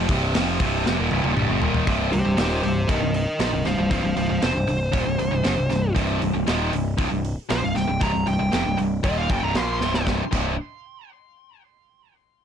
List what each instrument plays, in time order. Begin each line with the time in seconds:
0.09 picked electric bass C1, distorted electric guitar C2 G2 C3, kick, open hi-hat
0.34 picked electric bass F1, distorted electric guitar F2 C3 F3, snare, open hi-hat
0.60 picked electric bass C1, distorted electric guitar C2 G2 C3, kick, open hi-hat
0.85 picked electric bass F1, distorted electric guitar F2 C3, snare
0.98 picked electric bass D#1, distorted electric guitar D#2 A#2
1.11 picked electric bass C1, distorted electric guitar C2 G2, high tom
1.23 picked electric bass D#1, distorted electric guitar D#2 A#2, high tom
1.35 picked electric bass C1, distorted electric guitar C2 G2, mid tom
1.48 picked electric bass F#1, distorted electric guitar F#2 C#3
1.61 picked electric bass D#1, distorted electric guitar D#2 A#2 D#3, floor tom
1.74 floor tom
1.86 picked electric bass C1, distorted electric guitar C2 G2 C3, kick, open hi-hat
2.12 picked electric bass C1, distorted electric guitar C2 G2, lead electric guitar G4 C5, open hi-hat
2.25 picked electric bass C1, distorted electric guitar C2 G2
2.37 picked electric bass D#1, distorted electric guitar D#2 A#2 D#3, lead electric guitar G4 C5, snare, open hi-hat
2.62 picked electric bass C1, distorted electric guitar C2 G2, lead electric guitar G4 C5, open hi-hat
2.88 picked electric bass C1, distorted electric guitar C2 G2, lead electric guitar A#4 D#5, kick, open hi-hat
3.01 picked electric bass C1, distorted electric guitar C2 G2
3.14 lead electric guitar A#4 D#5, open hi-hat
3.40 picked electric bass A#1, distorted electric guitar A#2 F3, lead electric guitar A#4 D#5, snare, open hi-hat
3.53 picked electric bass C1, distorted electric guitar C2 G2
3.65 picked electric bass C1, distorted electric guitar C2 G2, lead electric guitar C5 F5, snare, open hi-hat
3.78 picked electric bass C1, distorted electric guitar C2 G2
3.90 picked electric bass C1, distorted electric guitar C2 G2, lead electric guitar C5 F5, kick, open hi-hat
4.04 picked electric bass C1, distorted electric guitar C2 G2
4.16 picked electric bass C1, distorted electric guitar C2 G2, lead electric guitar C5 F5, open hi-hat
4.29 picked electric bass C1, distorted electric guitar C2 G2
4.42 picked electric bass F1, distorted electric guitar F2 C3, lead electric guitar C5, snare, open hi-hat
4.54 picked electric bass C1, distorted electric guitar C2 G2
4.67 picked electric bass C1, distorted electric guitar C2 G2, open hi-hat
4.92 picked electric bass D#1, distorted electric guitar D#2 A#2, kick, open hi-hat
5.05 picked electric bass C1, distorted electric guitar C2 G2
5.18 picked electric bass C1, distorted electric guitar C2 G2, open hi-hat
5.31 picked electric bass C1, distorted electric guitar C2 G2
5.43 picked electric bass F#1, distorted electric guitar F#2 C#3, snare, open hi-hat
5.57 picked electric bass C1, distorted electric guitar C2 G2
5.69 picked electric bass C1, distorted electric guitar C2 G2, snare, open hi-hat
5.94 picked electric bass C1, distorted electric guitar C2 G2 C3, kick, open hi-hat
6.20 picked electric bass C1, distorted electric guitar C2 G2, open hi-hat
6.33 picked electric bass C1, distorted electric guitar C2 G2
6.46 picked electric bass D#1, distorted electric guitar D#2 A#2 D#3, snare, open hi-hat
6.72 picked electric bass C1, distorted electric guitar C2 G2, open hi-hat
6.97 picked electric bass C1, distorted electric guitar C2 G2, kick, open hi-hat
7.11 picked electric bass C1, distorted electric guitar C2 G2
7.25 open hi-hat
7.49 picked electric bass A#1, distorted electric guitar A#2 F3, lead electric guitar C5, snare, open hi-hat
7.62 picked electric bass C1, distorted electric guitar C2 G2, lead electric guitar F5
7.75 picked electric bass C1, distorted electric guitar C2 G2, lead electric guitar G5, snare, open hi-hat
7.87 picked electric bass C1, distorted electric guitar C2 G2
8.00 picked electric bass C1, distorted electric guitar C2 G2, lead electric guitar A#5, kick, open hi-hat
8.13 picked electric bass C1, distorted electric guitar C2 G2
8.26 picked electric bass C1, distorted electric guitar C2 G2, lead electric guitar G5, open hi-hat
8.39 picked electric bass C1, distorted electric guitar C2 G2
8.51 picked electric bass F1, distorted electric guitar F2 C3, snare, open hi-hat
8.65 picked electric bass C1, distorted electric guitar C2 G2
8.77 picked electric bass C1, distorted electric guitar C2 G2, open hi-hat
9.03 picked electric bass D#1, distorted electric guitar D#2 A#2 D#3, lead electric guitar D#5, kick, open hi-hat
9.18 lead electric guitar F5
9.29 picked electric bass F#1, distorted electric guitar F#2 C#3, lead electric guitar G5, kick, open hi-hat
9.42 picked electric bass C1, distorted electric guitar C2 G2, lead electric guitar A#5
9.55 picked electric bass A#1, distorted electric guitar A#2 F3 A#3, lead electric guitar C6, snare, open hi-hat
9.80 picked electric bass C1, distorted electric guitar C2 G2 C3, snare
9.94 snare
10.06 picked electric bass C1, distorted electric guitar C2 G2 C3, kick, snare
10.31 picked electric bass C1, distorted electric guitar C2 G2 C3, kick, crash